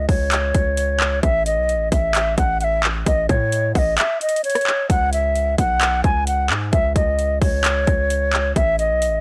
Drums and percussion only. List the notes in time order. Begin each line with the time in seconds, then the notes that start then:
0.09 kick, open hi-hat
0.32 clap, closed hi-hat
0.54 kick, closed hi-hat
0.77 closed hi-hat
1.00 clap
1.23 kick, closed hi-hat
1.46 closed hi-hat
1.69 closed hi-hat
1.92 kick, closed hi-hat
2.15 clap, closed hi-hat
2.38 kick, closed hi-hat
2.61 closed hi-hat
2.84 clap
3.06 kick, closed hi-hat
3.29 kick, closed hi-hat
3.52 closed hi-hat
3.75 kick, open hi-hat
3.98 clap, closed hi-hat
4.21 closed hi-hat
4.29 closed hi-hat
4.36 closed hi-hat
4.44 closed hi-hat
4.50 closed hi-hat
4.55 cross-stick, closed hi-hat
4.61 closed hi-hat
4.67 clap
4.90 kick, closed hi-hat
5.13 closed hi-hat
5.35 closed hi-hat
5.58 kick, closed hi-hat
5.81 clap, closed hi-hat
6.04 kick, closed hi-hat
6.27 closed hi-hat
6.50 clap
6.73 kick, closed hi-hat
6.96 kick, closed hi-hat
7.19 closed hi-hat
7.41 kick, open hi-hat
7.64 clap, closed hi-hat
7.87 kick, closed hi-hat
8.10 closed hi-hat
8.33 clap
8.56 kick, closed hi-hat
8.79 closed hi-hat
9.02 closed hi-hat